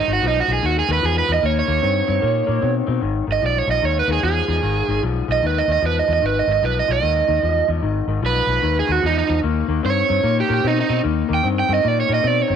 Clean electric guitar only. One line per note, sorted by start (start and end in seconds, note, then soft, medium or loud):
0.08 0.21 G#2 medium
0.08 0.21 D#3 medium
0.22 0.45 G#2 medium
0.22 0.46 F3 loud
0.48 0.61 G#2 medium
0.48 0.62 F3 medium
0.62 0.85 G#2 medium
0.62 0.86 D#3 medium
0.88 1.01 G#2 medium
0.88 1.02 D#3 medium
1.02 1.25 G#2 medium
1.02 1.25 F3 loud
1.28 1.41 G#2 medium
1.28 1.41 F3 medium
1.42 1.65 D#3 medium
1.42 1.66 A#3 medium
1.67 1.81 D#3 medium
1.67 1.81 A#3 medium
1.82 2.05 D#3 medium
1.82 2.05 C4 medium
2.07 2.21 D#3 medium
2.07 2.21 C4 medium
2.22 2.45 D#3 medium
2.22 2.45 A#3 medium
2.47 2.60 D#3 medium
2.47 2.61 A#3 medium
2.61 2.85 D#3 medium
2.61 2.85 C4 loud
2.86 3.00 D#3 medium
2.86 3.01 C4 medium
3.01 3.25 G#2 medium
3.01 3.25 D#3 medium
3.27 3.41 G#2 medium
3.27 3.41 D#3 medium
3.42 3.65 G#2 medium
3.42 3.65 F3 medium
3.67 3.81 G#2 medium
3.67 3.81 F3 medium
3.82 4.05 G#2 medium
3.82 4.05 D#3 medium
4.08 4.21 G#2 medium
4.08 4.21 D#3 medium
4.23 4.46 G#2 medium
4.23 4.46 F3 loud
4.48 4.61 G#2 medium
4.48 4.61 F3 medium
4.63 4.86 G#2 medium
4.63 4.86 D#3 medium
4.88 5.01 G#2 medium
4.88 5.02 D#3 medium
5.03 5.26 G#2 medium
5.03 5.26 F3 medium
5.28 5.41 G#2 medium
5.28 5.41 F3 medium
5.42 5.65 G#2 medium
5.42 5.66 D#3 medium
5.68 5.80 G#2 medium
5.68 5.82 D#3 medium
5.81 6.05 G#2 medium
5.81 6.05 F3 medium
6.08 6.21 G#2 medium
6.08 6.21 F3 medium
6.22 6.45 G#2 medium
6.22 6.45 D#3 medium
6.48 6.61 G#2 medium
6.48 6.61 D#3 medium
6.63 6.86 G#2 medium
6.63 6.86 F3 medium
6.88 7.01 G#2 medium
6.88 7.02 F3 medium
7.02 7.25 G#2 medium
7.02 7.25 D#3 medium
7.27 7.41 G#2 medium
7.27 7.41 D#3 medium
7.42 7.66 G#2 medium
7.42 7.66 F3 loud
7.68 7.81 G#2 medium
7.68 7.81 F3 medium
7.83 8.06 G#2 medium
7.83 8.06 D#3 medium
8.08 8.21 G#2 medium
8.08 8.22 D#3 medium
8.23 8.46 G#2 medium
8.23 8.46 F3 loud
8.48 8.61 G#2 medium
8.48 8.62 F3 medium
8.62 8.86 G#2 medium
8.62 8.86 D#3 medium
8.87 9.00 G#2 medium
8.87 9.01 D#3 medium
9.02 9.25 G#2 medium
9.02 9.26 F3 loud
9.27 9.41 G#2 medium
9.27 9.41 F3 medium
9.43 9.66 D#3 medium
9.43 9.66 A#3 medium
9.68 9.82 D#3 medium
9.68 9.82 A#3 medium
9.83 10.06 D#3 medium
9.83 10.06 C4 medium
10.08 10.22 D#3 medium
10.08 10.22 C4 medium
10.23 10.46 D#3 medium
10.23 10.46 A#3 medium
10.48 10.62 D#3 medium
10.48 10.62 A#3 medium
10.63 10.86 D#3 medium
10.63 10.87 C4 loud
10.89 11.02 D#3 medium
10.89 11.03 C4 medium
11.03 11.27 D#3 medium
11.03 11.27 A#3 medium
11.28 11.42 D#3 medium
11.28 11.42 A#3 medium
11.43 11.66 D#3 medium
11.43 11.67 C4 medium
11.69 11.82 D#3 medium
11.69 11.82 C4 medium
11.83 12.06 D#3 medium
11.83 12.07 A#3 medium
12.08 12.22 D#3 medium
12.08 12.22 A#3 medium
12.23 12.46 D#3 medium
12.23 12.47 C4 loud
12.48 12.56 D#3 medium
12.48 12.56 C4 medium